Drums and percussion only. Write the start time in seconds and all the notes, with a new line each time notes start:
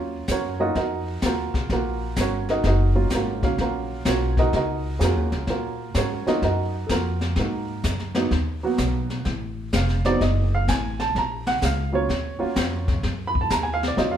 0.28 kick, snare, hi-hat pedal
0.75 brush sweep, kick, snare
1.22 kick, snare, hi-hat pedal
1.54 kick, snare
1.69 brush sweep, kick, snare
2.16 kick, snare, hi-hat pedal
2.49 snare
2.64 brush sweep, kick, snare
3.10 kick, snare, hi-hat pedal
3.43 kick, snare
3.58 brush sweep, kick, snare
4.05 kick, snare, hi-hat pedal
4.37 kick, snare
4.53 brush sweep, kick, snare
5.00 kick, snare, hi-hat pedal
5.32 snare
5.47 brush sweep, kick, snare
5.94 kick, snare, hi-hat pedal
6.27 snare
6.42 brush sweep, kick, snare
6.89 kick, snare, hi-hat pedal
7.21 snare
7.36 brush sweep, kick, snare
7.84 kick, snare, hi-hat pedal
8.00 snare
8.15 snare
8.31 brush sweep, kick, snare
8.78 kick, snare, hi-hat pedal
9.10 snare
9.25 brush sweep, kick, snare
9.73 kick, snare, hi-hat pedal
9.89 snare
10.05 snare
10.21 brush sweep, kick, snare
10.68 kick, snare, hi-hat pedal
11.00 snare
11.15 brush sweep, kick, snare
11.47 snare
11.62 kick, snare, hi-hat pedal
12.09 brush sweep, kick, snare
12.56 kick, snare, hi-hat pedal
12.88 kick, snare
13.03 brush sweep, kick, snare
13.35 kick
13.50 kick, snare, hi-hat pedal
13.83 snare
13.98 brush sweep, kick, snare